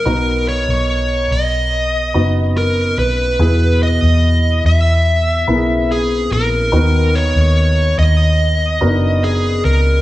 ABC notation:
X:1
M:4/4
L:1/16
Q:1/4=72
K:B
V:1 name="Lead electric guitar"
A2 c4 d6 A2 B2- | B2 d4 e6 G2 A2- | A2 c4 d6 G2 A2 |]
V:2 name="Grand piano"
[B,DFA]8 z2 [B,DFd]6 | [B,EG]8 z2 [B,EGA]6 | [B,DFA]8 z2 [B,=D^DFA]6 |]
V:3 name="Grand piano" clef=bass
z16 | B,,6 z8 z2 | D,6 z8 z2 |]
V:4 name="Fingered electric bass" clef=bass
B,,,3 B,,,3 B,,,4 F,,,4 B,,,2 | E,,3 E,,3 E,,4 B,,,4 A,,,2 | D,,3 D,,3 D,,4 F,,,4 C,,2 |]